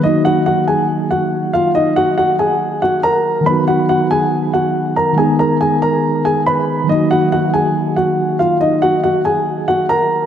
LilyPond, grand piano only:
\new Staff \with { instrumentName = "Grand piano" } { \time 4/4 \key ees \minor \tempo 4 = 140 <ees' ees''>8 <ges' ges''>8 <ges' ges''>8 <aes' aes''>4 <ges' ges''>4 <f' f''>8 | <ees' ees''>8 <ges' ges''>8 <ges' ges''>8 <aes' aes''>4 <ges' ges''>8 <bes' bes''>4 | <b' b''>8 <fis' fis''>8 <fis' fis''>8 <aes' aes''>4 <fis' fis''>4 <bes' bes''>8 | <aes' aes''>8 <bes' bes''>8 <aes' aes''>8 <bes' bes''>4 <aes' aes''>8 <ces'' ces'''>4 |
<ees' ees''>8 <ges' ges''>8 <ges' ges''>8 <aes' aes''>4 <ges' ges''>4 <f' f''>8 | <ees' ees''>8 <ges' ges''>8 <ges' ges''>8 <aes' aes''>4 <ges' ges''>8 <bes' bes''>4 | }